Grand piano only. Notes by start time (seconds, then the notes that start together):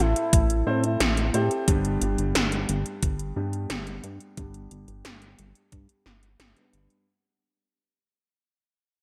Already playing: A2 C4 E4 A4 C5
0.67 A2 C4 E4 A4 C5
1.34 C4 E4 A4 C5
1.68 G2 G3 B3 D4 G4
3.36 G2 G3 B3 D4 G4
4.37 G2 G3 B3 D4 G4
6.57 G2 G3 B3 D4 B4